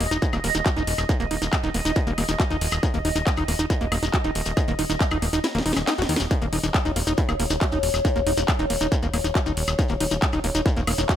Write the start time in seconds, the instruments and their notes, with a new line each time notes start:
Already playing: synth drone D#5
0.00 analog synth bass D#1, acid bass A#3, open hi-hat
0.11 analog synth bass D#1, acid bass D#4, closed hi-hat, shekere
0.22 acid bass E4, kick, closed hi-hat, shekere
0.33 analog synth bass D#1, acid bass A#3, closed hi-hat, high woodblock, shekere
0.44 analog synth bass D#1, acid bass A#3, open hi-hat
0.55 analog synth bass D#1, acid bass D#4, closed hi-hat, shekere
0.66 acid bass F#4, kick, clap, closed hi-hat, shekere
0.77 analog synth bass D#1, acid bass D#4, closed hi-hat, shekere
0.87 analog synth bass D#1, open hi-hat
0.98 analog synth bass D#1, closed hi-hat, high woodblock, shekere
1.09 acid bass D#4, kick, closed hi-hat, shekere
1.20 analog synth bass D#1, acid bass A#3, closed hi-hat, shekere
1.31 analog synth bass D#1, acid bass D#4, open hi-hat
1.42 analog synth bass D#1, acid bass D#4, closed hi-hat, shekere
1.53 kick, clap, closed hi-hat, high woodblock, shekere
1.63 analog synth bass D#1, acid bass D#4, closed hi-hat, shekere
1.74 analog synth bass D#1, acid bass A#3, open hi-hat
1.85 analog synth bass D#1, acid bass D#4, closed hi-hat, shekere
1.96 acid bass E4, kick, closed hi-hat, shekere
2.07 analog synth bass D#1, acid bass A#3, closed hi-hat, shekere
2.18 analog synth bass D#1, acid bass A#3, open hi-hat, high woodblock
2.28 analog synth bass D#1, acid bass D#4, closed hi-hat, shekere
2.40 acid bass F#4, kick, clap, closed hi-hat, shekere
2.50 analog synth bass D#1, acid bass D#4, closed hi-hat, shekere
2.61 analog synth bass D#1, open hi-hat
2.72 analog synth bass D#1, closed hi-hat, high woodblock, shekere
2.83 acid bass D#4, kick, closed hi-hat, shekere
2.94 analog synth bass D#1, acid bass A#3, closed hi-hat, shekere
3.05 analog synth bass D#1, acid bass D#4, open hi-hat
3.15 analog synth bass D#1, acid bass D#4, closed hi-hat, shekere
3.27 kick, clap, closed hi-hat, shekere
3.36 analog synth bass D#1, acid bass D#4, closed hi-hat, high woodblock, shekere
3.48 analog synth bass D#1, acid bass A#3, open hi-hat
3.59 analog synth bass D#1, acid bass D#4, closed hi-hat, shekere
3.70 acid bass E4, kick, closed hi-hat, shekere
3.81 analog synth bass D#1, acid bass A#3, closed hi-hat, shekere
3.92 analog synth bass D#1, acid bass A#3, open hi-hat, high woodblock
4.03 analog synth bass D#1, acid bass D#4, closed hi-hat, shekere
4.13 acid bass F#4, kick, clap, closed hi-hat, shekere
4.24 analog synth bass D#1, acid bass D#4, closed hi-hat, shekere
4.35 analog synth bass D#1, open hi-hat
4.46 analog synth bass D#1, closed hi-hat, shekere
4.57 acid bass D#4, kick, closed hi-hat, high woodblock, shekere
4.68 analog synth bass D#1, acid bass A#3, closed hi-hat, shekere
4.79 analog synth bass D#1, acid bass D#4, open hi-hat
4.90 analog synth bass D#1, acid bass D#4, closed hi-hat, shekere
5.00 kick, clap, closed hi-hat, shekere
5.11 analog synth bass D#1, acid bass D#4, closed hi-hat, high woodblock, shekere
5.22 analog synth bass D#1, acid bass A#3, open hi-hat
5.33 analog synth bass D#1, acid bass D#4, closed hi-hat, shekere
5.44 acid bass E4, snare, closed hi-hat, shekere
5.55 analog synth bass D#1, acid bass A#3, snare, closed hi-hat, shekere
5.66 analog synth bass D#1, acid bass D#4, open hi-hat
5.73 analog synth bass D#1, acid bass C#4, snare, closed hi-hat, high woodblock, shekere
5.87 acid bass D#4, snare, clap, closed hi-hat, shekere
5.98 analog synth bass D#1, acid bass F#4, snare, closed hi-hat, shekere
6.09 analog synth bass D#2, acid bass D#4, open hi-hat
6.16 analog synth bass D#1, snare, closed hi-hat, shekere
6.31 acid bass D#4, synth drone C#5, kick, closed hi-hat, shekere
6.42 analog synth bass D#1, acid bass A#3, closed hi-hat, shekere
6.53 analog synth bass D#1, acid bass D#4, open hi-hat
6.63 analog synth bass D#1, acid bass D#4, closed hi-hat, shekere
6.74 kick, clap, closed hi-hat, high woodblock, shekere
6.85 analog synth bass D#1, acid bass D#4, closed hi-hat, shekere
6.96 analog synth bass D#1, acid bass A#3, open hi-hat
7.07 analog synth bass D#1, acid bass D#4, closed hi-hat, shekere
7.17 acid bass E4, kick, closed hi-hat, shekere
7.29 analog synth bass D#1, acid bass A#3, closed hi-hat, high woodblock, shekere
7.40 analog synth bass D#1, acid bass A#3, open hi-hat
7.50 analog synth bass D#1, acid bass D#4, closed hi-hat, shekere
7.61 acid bass F#4, kick, clap, closed hi-hat, shekere
7.72 analog synth bass D#1, acid bass D#4, closed hi-hat, shekere
7.83 analog synth bass D#1, open hi-hat
7.94 analog synth bass D#1, closed hi-hat, high woodblock, shekere
8.05 acid bass D#4, kick, closed hi-hat, shekere
8.16 analog synth bass D#1, acid bass A#3, closed hi-hat, shekere
8.27 analog synth bass D#1, acid bass D#4, open hi-hat
8.37 analog synth bass D#1, acid bass D#4, closed hi-hat, shekere
8.48 kick, clap, closed hi-hat, high woodblock, shekere
8.59 analog synth bass D#1, acid bass D#4, closed hi-hat, shekere
8.70 analog synth bass D#1, acid bass A#3, open hi-hat
8.81 analog synth bass D#1, acid bass D#4, closed hi-hat, shekere
8.92 acid bass E4, kick, closed hi-hat, shekere
9.02 analog synth bass D#1, acid bass A#3, closed hi-hat, shekere
9.14 analog synth bass D#1, acid bass A#3, open hi-hat, high woodblock
9.24 analog synth bass D#1, acid bass D#4, closed hi-hat, shekere
9.35 acid bass F#4, kick, clap, closed hi-hat, shekere
9.46 analog synth bass D#1, acid bass D#4, closed hi-hat, shekere
9.57 analog synth bass D#1, open hi-hat
9.68 analog synth bass D#1, closed hi-hat, high woodblock, shekere
9.79 acid bass D#4, kick, closed hi-hat, shekere
9.88 analog synth bass D#1, acid bass A#3, closed hi-hat, shekere
10.00 analog synth bass D#1, acid bass D#4, open hi-hat
10.11 analog synth bass D#1, acid bass D#4, closed hi-hat, shekere
10.22 kick, clap, closed hi-hat, shekere
10.33 analog synth bass D#1, acid bass D#4, closed hi-hat, high woodblock, shekere
10.44 analog synth bass D#1, acid bass A#3, open hi-hat
10.55 analog synth bass D#1, acid bass D#4, closed hi-hat, shekere
10.66 acid bass E4, kick, closed hi-hat, shekere
10.77 analog synth bass D#1, acid bass A#3, closed hi-hat, shekere
10.87 analog synth bass D#1, acid bass A#3, open hi-hat, high woodblock
10.98 analog synth bass D#1, acid bass D#4, closed hi-hat, shekere
11.09 acid bass F#4, kick, clap, closed hi-hat, shekere